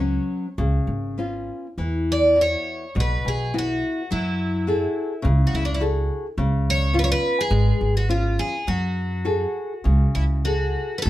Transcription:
Already playing: upright bass C#2, twelve-string acoustic guitar C#5
0.00 nylon-string guitar F#3 B3 C#4
0.58 upright bass C#2, nylon-string guitar C#3
0.87 upright bass G#1
1.18 nylon-string guitar B3 C#4 F4
1.78 upright bass E2, nylon-string guitar E3
2.12 twelve-string acoustic guitar D5
2.36 nylon-string guitar B3 E4 F#4
2.41 twelve-string acoustic guitar C#5
2.95 upright bass B1, nylon-string guitar B2
3.00 twelve-string acoustic guitar B4
3.25 upright bass B1, twelve-string acoustic guitar G#4
3.54 nylon-string guitar B3 E4 F#4
3.58 twelve-string acoustic guitar F#4
4.11 upright bass F#2, nylon-string guitar F#3, twelve-string acoustic guitar E4
4.67 nylon-string guitar F#4 G#4 A4
5.22 upright bass C#2, nylon-string guitar C#3
5.47 twelve-string acoustic guitar F#4
5.54 upright bass C#2, twelve-string acoustic guitar E4
5.65 twelve-string acoustic guitar D4
5.74 twelve-string acoustic guitar E4
5.80 nylon-string guitar F#4 G#4 A4
6.38 upright bass C#2, nylon-string guitar C#3
6.70 twelve-string acoustic guitar C#5
6.93 nylon-string guitar B3 C#4 F4
6.99 twelve-string acoustic guitar B4
7.04 twelve-string acoustic guitar C#5
7.12 twelve-string acoustic guitar B4
7.41 twelve-string acoustic guitar G#4
7.51 upright bass G#1, nylon-string guitar G#3
7.81 upright bass G#1
7.97 twelve-string acoustic guitar F#4
8.09 nylon-string guitar B3 C#4 F4, twelve-string acoustic guitar F4
8.39 twelve-string acoustic guitar G#4
8.67 upright bass F#2, nylon-string guitar F#3, twelve-string acoustic guitar F#4
9.25 nylon-string guitar F#4 G#4 A4
9.84 upright bass C#2, nylon-string guitar C#3
10.15 upright bass C#2, twelve-string acoustic guitar E4
10.44 nylon-string guitar F#4 G#4 A4, twelve-string acoustic guitar F#4
10.98 twelve-string acoustic guitar B4
11.02 upright bass F#2, nylon-string guitar F#3, twelve-string acoustic guitar A4

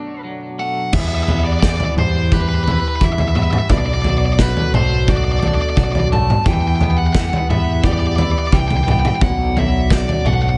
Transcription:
Already playing: analog synth pad B2 F#3 D4 A4, clean electric guitar F#3 A3 D4 F#4, lead electric guitar D5
0.24 clean electric guitar F#3
0.59 clean electric guitar A3, lead electric guitar F#5
0.93 picked electric bass E2, analog synth pad E3 E4 G4, clean electric guitar E3, lead electric guitar E5, kick, floor tom, crash
1.00 lead electric guitar E5
1.08 lead electric guitar E5
1.15 lead electric guitar E5
1.23 lead electric guitar E5
1.28 clean electric guitar B3, lead electric guitar E5, floor tom
1.39 lead electric guitar E5
1.44 lead electric guitar D5
1.53 lead electric guitar D5
1.60 clean electric guitar E3, lead electric guitar D5, kick, snare
1.69 lead electric guitar D5
1.77 lead electric guitar D5, floor tom
1.85 lead electric guitar D5
1.96 picked electric bass E2, lead electric guitar C5, mid tom
2.32 clean electric guitar G4, lead electric guitar B4, kick, floor tom, mid tom
2.41 lead electric guitar B4
2.48 lead electric guitar B4
2.55 lead electric guitar B4
2.64 clean electric guitar E4, lead electric guitar B4, floor tom
2.71 lead electric guitar B4
2.80 lead electric guitar B4
2.88 lead electric guitar B4
2.96 lead electric guitar B4
3.01 picked electric bass E2, clean electric guitar E3, lead electric guitar E5, kick
3.13 lead electric guitar E5
3.18 lead electric guitar E5, floor tom
3.28 lead electric guitar E5
3.35 clean electric guitar B3, lead electric guitar E5, mid tom
3.43 lead electric guitar E5
3.51 lead electric guitar E5, mid tom
3.59 lead electric guitar E5
3.68 picked electric bass B1, analog synth pad B2 F#4 A4 D5, clean electric guitar B2, lead electric guitar D5, kick, floor tom
3.78 lead electric guitar D5
3.86 lead electric guitar D5
3.94 lead electric guitar D5
4.02 clean electric guitar F#3, lead electric guitar D5, floor tom
4.10 lead electric guitar D5
4.18 lead electric guitar D5
4.26 lead electric guitar D5
4.33 lead electric guitar D5
4.39 clean electric guitar F#3, lead electric guitar B4, kick, snare
4.57 floor tom
4.73 picked electric bass B1, clean electric guitar A3, lead electric guitar C5, mid tom
5.08 clean electric guitar F#4, lead electric guitar D5, kick, floor tom, mid tom
5.17 lead electric guitar D5
5.24 lead electric guitar D5
5.32 lead electric guitar D5
5.40 clean electric guitar D4, lead electric guitar D5, floor tom
5.48 lead electric guitar D5
5.54 lead electric guitar D5
5.62 lead electric guitar D5
5.70 lead electric guitar D5
5.77 picked electric bass B1, clean electric guitar F#3, lead electric guitar D5, kick
5.84 lead electric guitar D5
5.92 lead electric guitar D5, floor tom
6.00 lead electric guitar D5
6.12 clean electric guitar A3, lead electric guitar A5, mid tom
6.30 mid tom
6.46 picked electric bass E2, clean electric guitar E3, analog synth pad E3 E4 G4 B4, lead electric guitar G5, kick, floor tom
6.54 lead electric guitar G5
6.61 lead electric guitar G5
6.68 lead electric guitar G5
6.76 lead electric guitar G5
6.81 clean electric guitar B3, lead electric guitar G5, floor tom
6.91 lead electric guitar G5
6.98 lead electric guitar F#5
7.07 lead electric guitar F#5
7.13 clean electric guitar E3, lead electric guitar F#5, kick, snare
7.21 lead electric guitar F#5
7.30 lead electric guitar F#5, floor tom
7.38 lead electric guitar F#5
7.49 picked electric bass E2, clean electric guitar B3, lead electric guitar E5, mid tom
7.84 clean electric guitar G4, lead electric guitar D5, kick, floor tom, mid tom
7.93 lead electric guitar D5
7.99 lead electric guitar D5
8.07 lead electric guitar D5
8.16 clean electric guitar E4, lead electric guitar D5, floor tom
8.22 lead electric guitar D5
8.31 lead electric guitar D5
8.39 lead electric guitar D5
8.47 lead electric guitar D5
8.52 picked electric bass C2, clean electric guitar E3, lead electric guitar G5, kick
8.60 lead electric guitar G5
8.68 lead electric guitar G5, floor tom
8.77 lead electric guitar G5
8.84 clean electric guitar B3, lead electric guitar G5
8.88 lead electric guitar G5, mid tom
9.00 lead electric guitar G5
9.05 lead electric guitar G5, mid tom
9.15 lead electric guitar G5
9.21 picked electric bass B1, clean electric guitar B2, analog synth pad B3 F#4 A4 D5, lead electric guitar F#5, kick, floor tom
9.56 clean electric guitar F#3, lead electric guitar E5, floor tom
9.90 clean electric guitar F#3, lead electric guitar D5, kick, snare
10.09 floor tom
10.25 picked electric bass B1, clean electric guitar A3, lead electric guitar F#5, mid tom
10.34 lead electric guitar F#5
10.42 lead electric guitar F#5
10.49 lead electric guitar F#5

